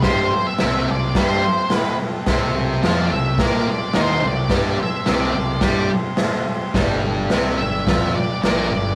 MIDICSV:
0, 0, Header, 1, 8, 480
1, 0, Start_track
1, 0, Tempo, 559180
1, 37, Time_signature, 4, 2, 24, 8
1, 7683, End_track
2, 0, Start_track
2, 0, Title_t, "Lead electric guitar"
2, 0, Program_c, 0, 29
2, 29, Note_on_c, 0, 72, 87
2, 401, Note_on_c, 0, 76, 98
2, 403, Note_off_c, 0, 72, 0
2, 769, Note_off_c, 0, 76, 0
2, 782, Note_on_c, 0, 74, 77
2, 1015, Note_off_c, 0, 74, 0
2, 1029, Note_on_c, 0, 72, 78
2, 1484, Note_off_c, 0, 72, 0
2, 1484, Note_on_c, 0, 71, 78
2, 1697, Note_off_c, 0, 71, 0
2, 2589, Note_on_c, 0, 74, 71
2, 2661, Note_off_c, 0, 74, 0
2, 2677, Note_on_c, 0, 76, 93
2, 2899, Note_off_c, 0, 76, 0
2, 2941, Note_on_c, 0, 74, 97
2, 3169, Note_off_c, 0, 74, 0
2, 3180, Note_on_c, 0, 74, 88
2, 3414, Note_off_c, 0, 74, 0
2, 3446, Note_on_c, 0, 72, 88
2, 3666, Note_off_c, 0, 72, 0
2, 3668, Note_on_c, 0, 74, 97
2, 4099, Note_off_c, 0, 74, 0
2, 4144, Note_on_c, 0, 76, 94
2, 4353, Note_off_c, 0, 76, 0
2, 4409, Note_on_c, 0, 74, 75
2, 5068, Note_off_c, 0, 74, 0
2, 6506, Note_on_c, 0, 76, 88
2, 6958, Note_off_c, 0, 76, 0
2, 6998, Note_on_c, 0, 74, 83
2, 7221, Note_off_c, 0, 74, 0
2, 7231, Note_on_c, 0, 74, 86
2, 7437, Note_off_c, 0, 74, 0
2, 7448, Note_on_c, 0, 74, 89
2, 7683, Note_off_c, 0, 74, 0
2, 7683, End_track
3, 0, Start_track
3, 0, Title_t, "Transistor combo organ"
3, 0, Program_c, 1, 18
3, 52, Note_on_c, 1, 67, 82
3, 52, Note_on_c, 1, 72, 94
3, 62, Note_on_c, 1, 60, 90
3, 266, Note_off_c, 1, 67, 0
3, 266, Note_off_c, 1, 72, 0
3, 271, Note_off_c, 1, 60, 0
3, 293, Note_on_c, 1, 60, 68
3, 296, Note_on_c, 1, 67, 63
3, 316, Note_on_c, 1, 71, 76
3, 507, Note_off_c, 1, 60, 0
3, 508, Note_off_c, 1, 67, 0
3, 518, Note_off_c, 1, 71, 0
3, 548, Note_on_c, 1, 67, 70
3, 549, Note_on_c, 1, 72, 82
3, 553, Note_on_c, 1, 60, 75
3, 754, Note_off_c, 1, 67, 0
3, 755, Note_off_c, 1, 72, 0
3, 756, Note_off_c, 1, 60, 0
3, 800, Note_on_c, 1, 60, 76
3, 801, Note_on_c, 1, 67, 66
3, 811, Note_on_c, 1, 72, 76
3, 1000, Note_off_c, 1, 60, 0
3, 1000, Note_off_c, 1, 67, 0
3, 1005, Note_off_c, 1, 72, 0
3, 1021, Note_on_c, 1, 60, 92
3, 1029, Note_on_c, 1, 72, 101
3, 1037, Note_on_c, 1, 67, 85
3, 1230, Note_off_c, 1, 60, 0
3, 1234, Note_off_c, 1, 72, 0
3, 1238, Note_off_c, 1, 67, 0
3, 1248, Note_on_c, 1, 60, 70
3, 1260, Note_on_c, 1, 67, 64
3, 1265, Note_on_c, 1, 72, 82
3, 1463, Note_off_c, 1, 60, 0
3, 1470, Note_off_c, 1, 67, 0
3, 1472, Note_off_c, 1, 72, 0
3, 1494, Note_on_c, 1, 60, 68
3, 1504, Note_on_c, 1, 67, 65
3, 1523, Note_on_c, 1, 72, 77
3, 1707, Note_off_c, 1, 60, 0
3, 1711, Note_off_c, 1, 67, 0
3, 1721, Note_off_c, 1, 72, 0
3, 1747, Note_on_c, 1, 60, 90
3, 1749, Note_on_c, 1, 67, 77
3, 1762, Note_on_c, 1, 69, 93
3, 1953, Note_off_c, 1, 60, 0
3, 1954, Note_off_c, 1, 67, 0
3, 1960, Note_off_c, 1, 69, 0
3, 1964, Note_on_c, 1, 60, 107
3, 1966, Note_on_c, 1, 67, 101
3, 1975, Note_on_c, 1, 72, 120
3, 2174, Note_off_c, 1, 67, 0
3, 2181, Note_off_c, 1, 60, 0
3, 2185, Note_on_c, 1, 67, 75
3, 2187, Note_off_c, 1, 72, 0
3, 2192, Note_on_c, 1, 60, 83
3, 2208, Note_on_c, 1, 72, 90
3, 2412, Note_off_c, 1, 67, 0
3, 2415, Note_off_c, 1, 60, 0
3, 2423, Note_off_c, 1, 72, 0
3, 2444, Note_on_c, 1, 60, 89
3, 2446, Note_on_c, 1, 67, 84
3, 2455, Note_on_c, 1, 72, 101
3, 2627, Note_off_c, 1, 67, 0
3, 2630, Note_off_c, 1, 60, 0
3, 2637, Note_on_c, 1, 67, 68
3, 2641, Note_on_c, 1, 60, 69
3, 2666, Note_on_c, 1, 71, 80
3, 2667, Note_off_c, 1, 72, 0
3, 2878, Note_off_c, 1, 67, 0
3, 2880, Note_off_c, 1, 60, 0
3, 2892, Note_off_c, 1, 71, 0
3, 2903, Note_on_c, 1, 60, 87
3, 2909, Note_on_c, 1, 67, 83
3, 2910, Note_on_c, 1, 72, 102
3, 3120, Note_off_c, 1, 67, 0
3, 3124, Note_off_c, 1, 60, 0
3, 3130, Note_on_c, 1, 67, 65
3, 3134, Note_off_c, 1, 72, 0
3, 3135, Note_on_c, 1, 60, 69
3, 3145, Note_on_c, 1, 72, 76
3, 3364, Note_off_c, 1, 67, 0
3, 3367, Note_off_c, 1, 60, 0
3, 3372, Note_off_c, 1, 72, 0
3, 3388, Note_on_c, 1, 67, 67
3, 3391, Note_on_c, 1, 60, 66
3, 3397, Note_on_c, 1, 72, 79
3, 3597, Note_off_c, 1, 60, 0
3, 3607, Note_on_c, 1, 60, 76
3, 3609, Note_off_c, 1, 67, 0
3, 3618, Note_off_c, 1, 72, 0
3, 3620, Note_on_c, 1, 67, 68
3, 3631, Note_on_c, 1, 74, 86
3, 3842, Note_off_c, 1, 67, 0
3, 3843, Note_off_c, 1, 60, 0
3, 3852, Note_on_c, 1, 67, 83
3, 3855, Note_off_c, 1, 74, 0
3, 3855, Note_on_c, 1, 60, 91
3, 3871, Note_on_c, 1, 71, 98
3, 4074, Note_off_c, 1, 60, 0
3, 4084, Note_on_c, 1, 60, 68
3, 4086, Note_off_c, 1, 67, 0
3, 4095, Note_off_c, 1, 71, 0
3, 4099, Note_on_c, 1, 67, 64
3, 4101, Note_on_c, 1, 72, 80
3, 4322, Note_off_c, 1, 60, 0
3, 4329, Note_off_c, 1, 67, 0
3, 4330, Note_off_c, 1, 72, 0
3, 4339, Note_on_c, 1, 60, 80
3, 4352, Note_on_c, 1, 72, 86
3, 4353, Note_on_c, 1, 67, 70
3, 4557, Note_off_c, 1, 67, 0
3, 4560, Note_off_c, 1, 60, 0
3, 4566, Note_off_c, 1, 72, 0
3, 4567, Note_on_c, 1, 67, 68
3, 4570, Note_on_c, 1, 60, 74
3, 4577, Note_on_c, 1, 72, 79
3, 4803, Note_off_c, 1, 67, 0
3, 4805, Note_off_c, 1, 60, 0
3, 4808, Note_off_c, 1, 72, 0
3, 4826, Note_on_c, 1, 60, 97
3, 4828, Note_on_c, 1, 67, 88
3, 4847, Note_on_c, 1, 72, 108
3, 5053, Note_off_c, 1, 60, 0
3, 5054, Note_off_c, 1, 67, 0
3, 5063, Note_off_c, 1, 72, 0
3, 5064, Note_on_c, 1, 60, 88
3, 5082, Note_on_c, 1, 67, 78
3, 5092, Note_on_c, 1, 72, 98
3, 5292, Note_off_c, 1, 60, 0
3, 5301, Note_off_c, 1, 67, 0
3, 5306, Note_off_c, 1, 72, 0
3, 5321, Note_on_c, 1, 60, 85
3, 5331, Note_on_c, 1, 67, 77
3, 5339, Note_on_c, 1, 72, 91
3, 5541, Note_off_c, 1, 60, 0
3, 5546, Note_off_c, 1, 67, 0
3, 5550, Note_off_c, 1, 72, 0
3, 5562, Note_on_c, 1, 60, 90
3, 5567, Note_on_c, 1, 67, 82
3, 5573, Note_on_c, 1, 72, 96
3, 5781, Note_off_c, 1, 60, 0
3, 5783, Note_off_c, 1, 67, 0
3, 5787, Note_off_c, 1, 72, 0
3, 5807, Note_on_c, 1, 62, 110
3, 5814, Note_on_c, 1, 67, 100
3, 5818, Note_on_c, 1, 71, 121
3, 6024, Note_off_c, 1, 62, 0
3, 6027, Note_off_c, 1, 67, 0
3, 6029, Note_off_c, 1, 71, 0
3, 6058, Note_on_c, 1, 62, 88
3, 6063, Note_on_c, 1, 67, 78
3, 6068, Note_on_c, 1, 71, 94
3, 6253, Note_off_c, 1, 62, 0
3, 6263, Note_off_c, 1, 67, 0
3, 6263, Note_on_c, 1, 62, 90
3, 6268, Note_off_c, 1, 71, 0
3, 6273, Note_on_c, 1, 67, 84
3, 6279, Note_on_c, 1, 71, 100
3, 6492, Note_off_c, 1, 62, 0
3, 6497, Note_off_c, 1, 67, 0
3, 6500, Note_off_c, 1, 71, 0
3, 6524, Note_on_c, 1, 67, 68
3, 6534, Note_on_c, 1, 71, 82
3, 6537, Note_on_c, 1, 62, 76
3, 6721, Note_off_c, 1, 67, 0
3, 6725, Note_off_c, 1, 62, 0
3, 6731, Note_on_c, 1, 67, 88
3, 6735, Note_on_c, 1, 62, 90
3, 6738, Note_off_c, 1, 71, 0
3, 6748, Note_on_c, 1, 71, 105
3, 6962, Note_off_c, 1, 62, 0
3, 6967, Note_off_c, 1, 67, 0
3, 6973, Note_on_c, 1, 62, 70
3, 6975, Note_off_c, 1, 71, 0
3, 6979, Note_on_c, 1, 67, 65
3, 6998, Note_on_c, 1, 71, 83
3, 7195, Note_off_c, 1, 62, 0
3, 7201, Note_off_c, 1, 71, 0
3, 7203, Note_off_c, 1, 67, 0
3, 7206, Note_on_c, 1, 62, 72
3, 7211, Note_on_c, 1, 71, 78
3, 7214, Note_on_c, 1, 67, 64
3, 7444, Note_off_c, 1, 62, 0
3, 7447, Note_off_c, 1, 71, 0
3, 7448, Note_off_c, 1, 67, 0
3, 7459, Note_on_c, 1, 62, 74
3, 7463, Note_on_c, 1, 67, 69
3, 7474, Note_on_c, 1, 71, 83
3, 7683, Note_off_c, 1, 62, 0
3, 7683, Note_off_c, 1, 67, 0
3, 7683, Note_off_c, 1, 71, 0
3, 7683, End_track
4, 0, Start_track
4, 0, Title_t, "Distorted electric guitar"
4, 0, Program_c, 2, 30
4, 28, Note_on_c, 2, 55, 96
4, 34, Note_on_c, 2, 67, 106
4, 265, Note_off_c, 2, 55, 0
4, 268, Note_off_c, 2, 67, 0
4, 516, Note_on_c, 2, 48, 94
4, 532, Note_on_c, 2, 60, 102
4, 748, Note_off_c, 2, 48, 0
4, 756, Note_off_c, 2, 60, 0
4, 768, Note_on_c, 2, 48, 68
4, 954, Note_off_c, 2, 48, 0
4, 997, Note_on_c, 2, 55, 94
4, 1003, Note_on_c, 2, 67, 100
4, 1229, Note_off_c, 2, 55, 0
4, 1232, Note_off_c, 2, 67, 0
4, 1967, Note_on_c, 2, 48, 94
4, 1971, Note_on_c, 2, 60, 93
4, 2424, Note_off_c, 2, 48, 0
4, 2427, Note_on_c, 2, 53, 80
4, 2435, Note_off_c, 2, 60, 0
4, 2441, Note_on_c, 2, 65, 105
4, 2663, Note_off_c, 2, 53, 0
4, 2668, Note_on_c, 2, 48, 62
4, 2670, Note_off_c, 2, 65, 0
4, 2863, Note_off_c, 2, 48, 0
4, 2909, Note_on_c, 2, 58, 93
4, 2918, Note_on_c, 2, 70, 100
4, 3144, Note_off_c, 2, 58, 0
4, 3149, Note_off_c, 2, 70, 0
4, 3382, Note_on_c, 2, 51, 91
4, 3392, Note_on_c, 2, 63, 94
4, 3619, Note_off_c, 2, 51, 0
4, 3622, Note_on_c, 2, 48, 72
4, 3626, Note_off_c, 2, 63, 0
4, 3820, Note_off_c, 2, 48, 0
4, 3859, Note_on_c, 2, 55, 89
4, 3868, Note_on_c, 2, 67, 97
4, 4100, Note_off_c, 2, 55, 0
4, 4104, Note_off_c, 2, 67, 0
4, 4341, Note_on_c, 2, 48, 82
4, 4350, Note_on_c, 2, 60, 96
4, 4573, Note_off_c, 2, 48, 0
4, 4583, Note_on_c, 2, 48, 64
4, 4585, Note_off_c, 2, 60, 0
4, 4781, Note_off_c, 2, 48, 0
4, 4814, Note_on_c, 2, 55, 90
4, 4825, Note_on_c, 2, 67, 102
4, 5057, Note_off_c, 2, 55, 0
4, 5063, Note_off_c, 2, 67, 0
4, 5789, Note_on_c, 2, 43, 93
4, 5796, Note_on_c, 2, 55, 110
4, 6266, Note_off_c, 2, 43, 0
4, 6269, Note_off_c, 2, 55, 0
4, 6276, Note_on_c, 2, 48, 89
4, 6288, Note_on_c, 2, 60, 101
4, 6509, Note_off_c, 2, 48, 0
4, 6515, Note_off_c, 2, 60, 0
4, 6527, Note_on_c, 2, 43, 66
4, 6714, Note_off_c, 2, 43, 0
4, 6766, Note_on_c, 2, 53, 96
4, 6776, Note_on_c, 2, 65, 103
4, 6994, Note_off_c, 2, 53, 0
4, 6999, Note_off_c, 2, 65, 0
4, 7257, Note_on_c, 2, 46, 88
4, 7263, Note_on_c, 2, 58, 94
4, 7480, Note_off_c, 2, 46, 0
4, 7483, Note_off_c, 2, 58, 0
4, 7492, Note_on_c, 2, 43, 74
4, 7677, Note_off_c, 2, 43, 0
4, 7683, End_track
5, 0, Start_track
5, 0, Title_t, "Fingered electric bass"
5, 0, Program_c, 3, 33
5, 26, Note_on_c, 3, 43, 95
5, 254, Note_off_c, 3, 43, 0
5, 534, Note_on_c, 3, 36, 92
5, 748, Note_off_c, 3, 36, 0
5, 782, Note_on_c, 3, 36, 80
5, 987, Note_off_c, 3, 36, 0
5, 992, Note_on_c, 3, 43, 84
5, 1217, Note_off_c, 3, 43, 0
5, 1955, Note_on_c, 3, 36, 93
5, 2401, Note_off_c, 3, 36, 0
5, 2435, Note_on_c, 3, 41, 89
5, 2658, Note_off_c, 3, 41, 0
5, 2671, Note_on_c, 3, 36, 81
5, 2896, Note_off_c, 3, 36, 0
5, 2903, Note_on_c, 3, 46, 86
5, 3131, Note_off_c, 3, 46, 0
5, 3401, Note_on_c, 3, 39, 95
5, 3621, Note_off_c, 3, 39, 0
5, 3627, Note_on_c, 3, 36, 73
5, 3853, Note_off_c, 3, 36, 0
5, 3860, Note_on_c, 3, 43, 89
5, 4090, Note_off_c, 3, 43, 0
5, 4369, Note_on_c, 3, 36, 87
5, 4585, Note_off_c, 3, 36, 0
5, 4611, Note_on_c, 3, 36, 82
5, 4818, Note_off_c, 3, 36, 0
5, 4823, Note_on_c, 3, 43, 92
5, 5052, Note_off_c, 3, 43, 0
5, 5796, Note_on_c, 3, 31, 91
5, 6243, Note_off_c, 3, 31, 0
5, 6286, Note_on_c, 3, 36, 93
5, 6505, Note_off_c, 3, 36, 0
5, 6525, Note_on_c, 3, 31, 86
5, 6745, Note_off_c, 3, 31, 0
5, 6755, Note_on_c, 3, 41, 94
5, 6979, Note_off_c, 3, 41, 0
5, 7238, Note_on_c, 3, 34, 100
5, 7461, Note_off_c, 3, 34, 0
5, 7465, Note_on_c, 3, 31, 80
5, 7683, Note_off_c, 3, 31, 0
5, 7683, End_track
6, 0, Start_track
6, 0, Title_t, "Muted distorted electric guitar strokes"
6, 273, Note_on_c, 9, 29, 61
6, 359, Note_off_c, 9, 29, 0
6, 3149, Note_on_c, 9, 29, 53
6, 3235, Note_off_c, 9, 29, 0
6, 4115, Note_on_c, 9, 29, 60
6, 4201, Note_off_c, 9, 29, 0
6, 7021, Note_on_c, 9, 29, 56
6, 7107, Note_off_c, 9, 29, 0
6, 7683, End_track
7, 0, Start_track
7, 0, Title_t, "Muted fingered electric bass strokes"
7, 294, Note_on_c, 9, 29, 39
7, 380, Note_off_c, 9, 29, 0
7, 3162, Note_on_c, 9, 29, 38
7, 3248, Note_off_c, 9, 29, 0
7, 4127, Note_on_c, 9, 29, 41
7, 4213, Note_off_c, 9, 29, 0
7, 6991, Note_on_c, 9, 29, 42
7, 7077, Note_off_c, 9, 29, 0
7, 7683, End_track
8, 0, Start_track
8, 0, Title_t, "Drums"
8, 20, Note_on_c, 9, 46, 52
8, 21, Note_on_c, 9, 38, 102
8, 27, Note_on_c, 9, 36, 93
8, 106, Note_off_c, 9, 46, 0
8, 107, Note_off_c, 9, 38, 0
8, 113, Note_off_c, 9, 36, 0
8, 502, Note_on_c, 9, 46, 56
8, 503, Note_on_c, 9, 38, 108
8, 587, Note_off_c, 9, 46, 0
8, 588, Note_off_c, 9, 38, 0
8, 987, Note_on_c, 9, 38, 107
8, 987, Note_on_c, 9, 46, 62
8, 988, Note_on_c, 9, 36, 100
8, 1072, Note_off_c, 9, 46, 0
8, 1073, Note_off_c, 9, 38, 0
8, 1074, Note_off_c, 9, 36, 0
8, 1460, Note_on_c, 9, 46, 60
8, 1461, Note_on_c, 9, 38, 107
8, 1546, Note_off_c, 9, 38, 0
8, 1546, Note_off_c, 9, 46, 0
8, 1943, Note_on_c, 9, 46, 57
8, 1944, Note_on_c, 9, 38, 107
8, 1948, Note_on_c, 9, 36, 105
8, 2029, Note_off_c, 9, 46, 0
8, 2030, Note_off_c, 9, 38, 0
8, 2034, Note_off_c, 9, 36, 0
8, 2433, Note_on_c, 9, 38, 106
8, 2433, Note_on_c, 9, 46, 53
8, 2518, Note_off_c, 9, 46, 0
8, 2519, Note_off_c, 9, 38, 0
8, 2902, Note_on_c, 9, 36, 104
8, 2906, Note_on_c, 9, 46, 55
8, 2907, Note_on_c, 9, 38, 110
8, 2988, Note_off_c, 9, 36, 0
8, 2992, Note_off_c, 9, 46, 0
8, 2993, Note_off_c, 9, 38, 0
8, 3377, Note_on_c, 9, 46, 55
8, 3378, Note_on_c, 9, 38, 109
8, 3463, Note_off_c, 9, 46, 0
8, 3464, Note_off_c, 9, 38, 0
8, 3859, Note_on_c, 9, 36, 98
8, 3859, Note_on_c, 9, 46, 53
8, 3860, Note_on_c, 9, 38, 105
8, 3944, Note_off_c, 9, 36, 0
8, 3945, Note_off_c, 9, 38, 0
8, 3945, Note_off_c, 9, 46, 0
8, 4343, Note_on_c, 9, 46, 54
8, 4344, Note_on_c, 9, 38, 109
8, 4429, Note_off_c, 9, 46, 0
8, 4430, Note_off_c, 9, 38, 0
8, 4816, Note_on_c, 9, 46, 59
8, 4817, Note_on_c, 9, 38, 111
8, 4819, Note_on_c, 9, 36, 100
8, 4902, Note_off_c, 9, 38, 0
8, 4902, Note_off_c, 9, 46, 0
8, 4905, Note_off_c, 9, 36, 0
8, 5296, Note_on_c, 9, 38, 111
8, 5296, Note_on_c, 9, 46, 61
8, 5381, Note_off_c, 9, 46, 0
8, 5382, Note_off_c, 9, 38, 0
8, 5788, Note_on_c, 9, 36, 100
8, 5791, Note_on_c, 9, 38, 103
8, 5791, Note_on_c, 9, 46, 55
8, 5874, Note_off_c, 9, 36, 0
8, 5876, Note_off_c, 9, 46, 0
8, 5877, Note_off_c, 9, 38, 0
8, 6265, Note_on_c, 9, 46, 58
8, 6266, Note_on_c, 9, 38, 108
8, 6351, Note_off_c, 9, 46, 0
8, 6352, Note_off_c, 9, 38, 0
8, 6755, Note_on_c, 9, 36, 110
8, 6757, Note_on_c, 9, 38, 108
8, 6757, Note_on_c, 9, 46, 56
8, 6841, Note_off_c, 9, 36, 0
8, 6842, Note_off_c, 9, 46, 0
8, 6843, Note_off_c, 9, 38, 0
8, 7240, Note_on_c, 9, 46, 56
8, 7241, Note_on_c, 9, 38, 117
8, 7326, Note_off_c, 9, 46, 0
8, 7327, Note_off_c, 9, 38, 0
8, 7683, End_track
0, 0, End_of_file